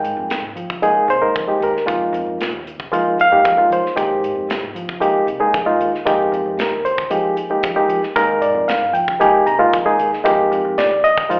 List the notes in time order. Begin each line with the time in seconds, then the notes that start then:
Already playing: G#3 A#3 D#4 G#4 G5
0.04 G#2, closed hi-hat
0.17 F2
0.30 C2, snare, closed hi-hat
0.42 G#2
0.56 F3, closed hi-hat
0.70 kick
0.82 G#3 A#3 D#4 G#4, closed hi-hat
1.08 C2 C5, closed hi-hat
1.21 G#3 A#3 D#4 A#4
1.36 F2, kick, closed hi-hat
1.47 G#3 A#3 D#4 G4
1.60 D#2 A#4, closed hi-hat
1.77 snare
1.86 F2 G#3 A#3 D#4 F4, kick, closed hi-hat
2.13 F2, closed hi-hat
2.26 F2
2.41 A#2, snare, closed hi-hat
2.53 D#2
2.67 closed hi-hat
2.80 kick
2.92 F3 G#3 A#3 D#4 F4, closed hi-hat
3.19 F5, closed hi-hat
3.32 G#3 A#3 D#4 G4
3.45 F3, kick, closed hi-hat
3.57 G#3 A#3 D#4 F4, muted fingered electric bass stroke
3.70 F3 C5, closed hi-hat
3.86 snare
3.96 D#2 G#3 A#3 D#4 G4, kick, closed hi-hat
4.22 G#2, closed hi-hat
4.35 F2
4.49 C2, snare, closed hi-hat
4.63 G#2
4.75 F3, closed hi-hat
4.89 kick
5.00 G#3 A#3 D#4 G4, closed hi-hat
5.27 C2, closed hi-hat
5.40 G#3 A#3 D#4 G#4
5.54 F2, kick, closed hi-hat
5.66 G#3 A#3 D#4 F4
5.80 D#2, closed hi-hat
5.95 snare
6.06 F2 G#3 A#3 D#4 G4, kick, closed hi-hat
6.32 F2, closed hi-hat
6.46 F2
6.57 A#2, snare, closed hi-hat
6.61 A#4
6.71 D#2
6.85 C5, closed hi-hat
6.98 muted fingered electric bass stroke, kick
7.10 F3 G#3 A#3 D#4 G4 G#4, closed hi-hat
7.37 closed hi-hat
7.50 G#3 A#3 D#4 G4
7.63 F3, kick, closed hi-hat
7.76 G#3 A#3 D#4 G4, muted fingered electric bass stroke
7.88 F3, closed hi-hat
8.03 snare
8.16 D#2 G#3 A#3 D#4 A#4, kick, closed hi-hat
8.41 G#2 D5, closed hi-hat
8.54 F2
8.68 C2 F5, snare, closed hi-hat
8.81 G#2
8.93 F3 G5, closed hi-hat
9.08 kick
9.20 G#3 A#3 D#4 G4 G#5, closed hi-hat
9.47 C2 A#5, closed hi-hat
9.59 G#3 A#3 D#4 F4
9.73 F2, kick, closed hi-hat
9.85 G#3 A#3 D#4 G#4
9.99 D#2, closed hi-hat
10.13 snare
10.24 F2 G#3 A#3 D#4 G4, kick, closed hi-hat
10.52 F2, closed hi-hat
10.65 F2
10.78 A#2 D5, snare, closed hi-hat
10.90 D#2
11.04 D#5, closed hi-hat
11.18 muted fingered electric bass stroke, kick
11.29 F3 G#3 A#3 D#4 F4 C5, closed hi-hat